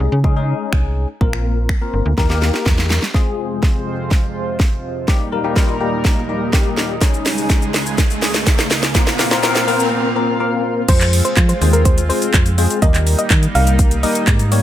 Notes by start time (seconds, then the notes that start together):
Already playing: G#3 C#4 D#4 G#4
0.12 C#3
0.24 G#3 C#4 D#4 G#4, kick
0.36 G#3 C#4 D#4 G#4
0.73 C2, finger snap, kick
1.21 A#1 A#3 C4 F4 A#4, kick
1.33 finger snap
1.69 finger snap, kick
1.81 A#3 C4 F4 A#4
1.93 G1
2.05 D2
2.18 D#2 A#3 D#4 G4 A#4, kick, snare
2.30 A#3 D#4 G4 A#4, snare
2.42 snare
2.54 snare
2.66 E2, kick, snare
2.78 snare
2.90 snare
3.02 snare
3.14 F2 C3 G#3 C4 F4 G#4 C5, kick, snare, riser
3.63 kick, snare
4.11 kick, snare
4.60 kick, snare
5.08 D#2 A#2 G3 A#3 D#4 G4 A#4, kick, snare
5.32 G3 A#3 D#4 A#4
5.44 G3 A#3 D#4 G4
5.56 G3 A#3 D#4 F4, kick, snare
5.80 G3 A#3 D#4 G4
6.05 kick, snare
6.29 G3 A#3 D#4 G4
6.53 G3 A#3 D#4 G4, kick, snare
6.77 snare
7.01 C#2 C#3 G#3 C#4 D#4 G#4, kick, snare, closed hi-hat, shaker
7.14 shaker
7.26 snare, open hi-hat, shaker
7.38 shaker
7.50 kick, snare, closed hi-hat, shaker
7.62 shaker
7.74 snare, open hi-hat, shaker
7.86 shaker
7.98 kick, snare, closed hi-hat, shaker
8.10 shaker
8.22 snare, open hi-hat, shaker
8.34 snare, shaker
8.47 kick, snare, closed hi-hat, shaker
8.58 snare, shaker
8.71 snare, open hi-hat, shaker
8.83 snare, shaker
8.95 A#2 A#3 C4 F4 A#4 F5, kick, snare, closed hi-hat, shaker
9.07 snare, shaker
9.19 A#3 C4 F4 A#4, snare, open hi-hat, shaker
9.31 A#3 C4 F4 A#4, snare, shaker
9.43 A#3 C4 F4 A#4, snare, closed hi-hat, shaker
9.55 snare, shaker
9.67 A#3 C4 F4 A#4, open hi-hat, shaker
9.80 shaker
10.16 A#3 C4 F4 A#4
10.40 A#3 C4 F4 A#4
10.88 F2 G#3 C4 F4 G#4 C5, kick, closed hi-hat, crash, shaker
11.01 clap, closed hi-hat, shaker
11.13 open hi-hat, shaker
11.25 C5, closed hi-hat, shaker
11.37 F3, kick, clap, closed hi-hat, shaker
11.49 C5, closed hi-hat, shaker
11.61 D#2 G#3 C4 F4 G#4 C5, open hi-hat, shaker
11.73 A#4, closed hi-hat, shaker
11.85 C5, kick, closed hi-hat, shaker
11.98 closed hi-hat, shaker
12.09 G#3 C4 F4 G#4 C5, open hi-hat, shaker
12.22 closed hi-hat, shaker
12.34 F2, kick, clap, closed hi-hat, shaker
12.46 closed hi-hat, shaker
12.58 G#3 C4 F4 G#4 C5, open hi-hat, shaker
12.70 closed hi-hat, shaker
12.82 D#2 G3 A#3 D#4 G4 A#4 D#5, kick, closed hi-hat, shaker
12.94 clap, closed hi-hat, shaker
13.07 open hi-hat, shaker
13.18 D#5, closed hi-hat, shaker
13.30 D#3, kick, clap, closed hi-hat, shaker
13.43 closed hi-hat, shaker
13.55 C2 G3 A#3 D#4 G4 A#4 F5, open hi-hat, shaker
13.67 closed hi-hat, shaker
13.79 kick, closed hi-hat, shaker
13.91 closed hi-hat, shaker
14.03 G3 A#3 D#4 G4 A#4 D#5, open hi-hat, shaker
14.15 closed hi-hat, shaker
14.27 G#2, kick, clap, closed hi-hat, shaker
14.39 closed hi-hat, shaker
14.51 G3 A#3 D#4 G4 C#5, open hi-hat, shaker